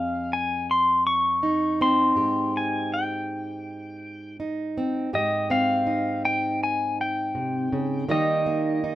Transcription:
Already playing: F2 G#4 F5
0.33 G#5
0.71 C6
1.07 C#6
1.43 D#4
1.81 C4 C6
2.16 G#2 G4
2.57 G#5
2.94 G5
4.40 D#4
4.78 C4
5.13 G#2 G4 D#5
5.50 C4 F5
5.86 D#4
6.25 G5
6.63 G#5
7.01 G5
7.35 C3
7.73 C#3
8.09 D#3 G3 A#3 D#4 G4 D#5
8.46 A#3
8.84 D#4

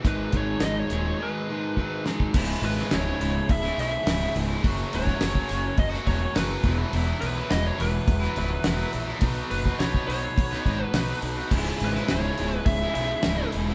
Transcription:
0.04 G#1 G#2 D#3 G#3 B4, kick, closed hi-hat
0.32 G#1 G#2 D#3 G#3 C#5, kick, closed hi-hat
0.60 G#1 G#2 D#3 G#3 D#5, snare, closed hi-hat
0.79 C#5
0.90 D#1 G#2 D#3 G#3, closed hi-hat
1.20 G#2 D#3 G#3 B4
1.50 G#2 D#3 G#3
1.77 G#2 D#3 G#3, kick
2.05 G#2 D#3 G#3, snare
2.20 kick
2.33 C#1 C#2 G#2 C#3 G#3 E4, kick, crash
2.46 C#3 G#3 E4
2.62 G#1 B4, open hi-hat
2.77 C#3 G#3 E4, snare
2.91 C#1 C#2 G#2 C#3 G#3 E4 C#5, snare, open hi-hat
3.19 C#1 G#2 C#3 G#3 E4, open hi-hat
3.34 C#3 G#3 E4, muted overdriven electric guitar stroke
3.49 C#1 E5, kick, open hi-hat
3.63 C#3 G#3 E4, snare
3.78 B1 G#2 C#3 G#3 E4 E5, open hi-hat
3.92 C#3 G#3 E4, muted overdriven electric guitar stroke
4.06 C#1 C#2 G#2 C#3 G#3 E4, snare, open hi-hat
4.19 C#3 G#3 E4
4.35 C#1 G#2 C#3 G#3 E4, open hi-hat
4.49 C#3 G#3 E4
4.61 F#1 F#2 C#3 F#3 A#3 C#4 F#4, kick, open hi-hat
4.78 F#3 A#3 C#4 F#4
4.93 C#1 C#5, open hi-hat
5.06 F#3 A#3 C#4 F#4, kick, snare
5.21 F#1 F#2 C#3 F#3 A#3 C#4 F#4, snare, open hi-hat
5.35 kick
5.47 F#1 F#3 A#3 C#4, open hi-hat
5.51 F#3 A#3 C#4 F#4
5.62 A#3 C#4 F#4, muted overdriven electric guitar stroke
5.67 F#3
5.77 F#1 D#5, kick, open hi-hat
5.92 F#3 A#3 C#4 F#4, snare
6.05 E1 F#3 A#3 C#4 F#4 C#5, kick, open hi-hat
6.19 F#3 A#3 C#4 F#4, muted overdriven electric guitar stroke
6.35 F#1 F#2 C#3 F#3 A#3 C#4 F#4 B4, snare, open hi-hat
6.47 F#3 A#3 C#4 F#4
6.62 E1 E2 B2 E3 F#3 B3 E4, kick, open hi-hat
6.78 E3 F#3 B3 E4
6.93 E1 E2 B2 E3 F#3 B3 E4, open hi-hat
7.06 E3 F#3 B3 E4
7.21 B1 B4, open hi-hat
7.35 E3 F#3 B3 E4
7.50 E1 E2 B2 E3 F#3 B3 E4 D#5, snare, open hi-hat
7.67 C#5
7.78 E1 E3 F#3 B3 E4 B4, open hi-hat
7.91 F#3 B3 E4, muted overdriven electric guitar stroke
7.95 E3
8.08 E1, kick, open hi-hat
8.22 E3 F#3 B3 E4, snare
8.36 C#1 E3 F#3 B3 E4, open hi-hat
8.50 E3 F#3 B3 E4, muted overdriven electric guitar stroke
8.64 E1 E2 B2 E3 F#3 B3 E4, snare, open hi-hat
8.77 E3 F#3 B3 E4
8.93 A#1 E3 F#3 B3 E4, open hi-hat
9.07 E3 F#3 B3 E4
9.21 B1 B2 F#3 B3 D#4 F#4 B4, kick, open hi-hat
9.35 B3 D#4 F#4 B4
9.51 F#1 B4, open hi-hat
9.64 B3 D#4 F#4 B4, kick, snare
9.78 B1 B2 F#3 B3 D#4 F#4 B4 C#5, snare, open hi-hat
9.95 kick
10.07 B1 B3 D#4 F#4 B4 C#5, open hi-hat
10.20 B3 D#4 F#4 B4, muted overdriven electric guitar stroke
10.38 B1, kick, open hi-hat
10.50 B3 D#4 F#4 B4, snare
10.65 G#1 B3 D#4 F#4 B4, kick, open hi-hat
10.79 B3 D#4 F#4 B4, muted overdriven electric guitar stroke
10.85 B4
10.93 B1 B2 F#3 B3 D#4 F#4 B4, snare, open hi-hat
11.09 B3 D#4 F#4 B4
11.22 B1 B3 D#4 F#4 B4, open hi-hat
11.36 B3 D#4 F#4 B4
11.51 C#1 C#2 G#2 C#3 G#3 C#4 E4 G#4 C#5, kick, crash
11.66 C#3 G#3 E4
11.80 G#1, open hi-hat
11.85 B4
11.94 C#3 G#3 E4, snare
12.08 C#1 C#2 G#2 C#3 G#3 E4 C#5, snare, open hi-hat
12.36 C#1 G#2 C#3 G#3 E4, open hi-hat
12.50 C#3 G#3 E4, muted overdriven electric guitar stroke
12.66 C#1 E5, kick, open hi-hat
12.80 C#3 G#3 E4
12.92 B1 G#2 C#3 G#3 E4 E5, open hi-hat
12.97 G#2 C#3 G#3 E4
13.08 C#3 G#3 E4, muted overdriven electric guitar stroke
13.22 C#1 C#2 G#2 C#3 G#3 E4, snare, open hi-hat
13.38 C#3 G#3 E4
13.52 E1 G#2 C#3 G#3 E4, open hi-hat
13.66 C#3 G#3 E4

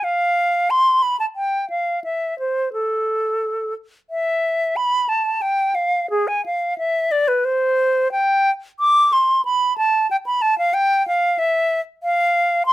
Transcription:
0.04 F5
0.70 C6
1.02 B5
1.20 A5
1.35 G5
1.70 F5
2.04 E5
2.39 C5
2.73 A4
4.10 E5
4.76 B5
5.09 A5
5.42 G5
5.75 F5
6.10 G#4
6.28 G#5
6.46 F5
6.78 E5
7.11 D5
7.28 B4
7.45 C5
8.12 G5
8.80 D6
9.13 C6
9.45 B5
9.78 A5
10.11 G5
10.26 B5
10.42 A5
10.58 F5
10.74 G5
11.08 F5
11.39 E5
12.03 F5
12.66 C6

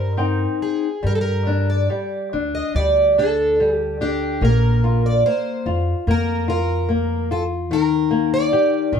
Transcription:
Already playing: G2 G3 A#4 C5
0.17 C4 D#4 G5
0.62 G#4
1.03 G2 G3 A#4
1.15 A4
1.21 A#4
1.47 D4
1.70 D5
1.90 G3
2.33 D2 D4
2.55 D#5
2.75 D2 G3 D5
3.18 D4 A4
3.60 G3
3.75 G4
4.01 D4 G4
4.41 A#1 A#3 A#4
4.84 F4
5.06 D5
5.26 A#3 C5
5.66 F2 F4
6.07 F2 A#3 A#4
6.48 F4 A#4
6.89 A#3
7.31 F4 A4
7.71 D#2 D#3 A#4
8.11 A#3
8.34 D5
8.53 G4
8.92 A#1 D#3

